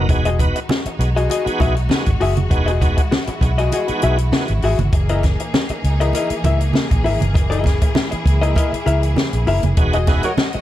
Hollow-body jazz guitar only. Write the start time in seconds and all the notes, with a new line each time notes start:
0.10 muted hollow-body jazz guitar stroke
0.25 F#4 G#4 D#5
0.40 muted hollow-body jazz guitar stroke
0.56 muted hollow-body jazz guitar stroke
0.70 muted hollow-body jazz guitar stroke
0.87 muted hollow-body jazz guitar stroke
1.16 F#4 G#4 D#5
1.30 F#4 G#4 D#5
1.46 muted hollow-body jazz guitar stroke
1.60 F#4 G#4 E5
1.76 muted hollow-body jazz guitar stroke
1.89 muted hollow-body jazz guitar stroke
2.20 F#4 G#4 E5
2.36 muted hollow-body jazz guitar stroke
2.50 muted hollow-body jazz guitar stroke
2.66 F#4 G#4 D#5
2.81 muted hollow-body jazz guitar stroke
2.97 muted hollow-body jazz guitar stroke
3.11 muted hollow-body jazz guitar stroke
3.28 muted hollow-body jazz guitar stroke
3.58 F#4 G#4 D#5
3.73 F#4 G#4 D#5
3.88 muted hollow-body jazz guitar stroke
4.03 F#4 G#4 E5
4.19 muted hollow-body jazz guitar stroke
4.32 muted hollow-body jazz guitar stroke
4.64 F#4 G#4 E5
4.80 muted hollow-body jazz guitar stroke
4.93 muted hollow-body jazz guitar stroke
5.10 E4 A#4 D#5
5.25 muted hollow-body jazz guitar stroke
5.40 muted hollow-body jazz guitar stroke
5.54 muted hollow-body jazz guitar stroke
5.70 muted hollow-body jazz guitar stroke
6.00 E4 A#4 D#5
6.15 E4 A#4 D#5
6.31 muted hollow-body jazz guitar stroke
6.45 E4 A#4 E5
6.60 muted hollow-body jazz guitar stroke
6.75 muted hollow-body jazz guitar stroke
7.04 E4 A#4 E5
7.20 muted hollow-body jazz guitar stroke
7.34 muted hollow-body jazz guitar stroke
7.50 E4 A#4 D#5
7.65 muted hollow-body jazz guitar stroke
7.82 muted hollow-body jazz guitar stroke
7.95 muted hollow-body jazz guitar stroke
8.11 muted hollow-body jazz guitar stroke
8.41 E4 A#4 D#5
8.56 E4 A#4 D#5
8.72 muted hollow-body jazz guitar stroke
8.86 E4 A#4 E5
9.01 muted hollow-body jazz guitar stroke
9.16 muted hollow-body jazz guitar stroke
9.47 E4 A#4 E5
9.64 muted hollow-body jazz guitar stroke
9.78 muted hollow-body jazz guitar stroke
9.94 F#4 G#4 D#5
10.08 muted hollow-body jazz guitar stroke
10.24 muted hollow-body jazz guitar stroke
10.39 muted hollow-body jazz guitar stroke
10.55 muted hollow-body jazz guitar stroke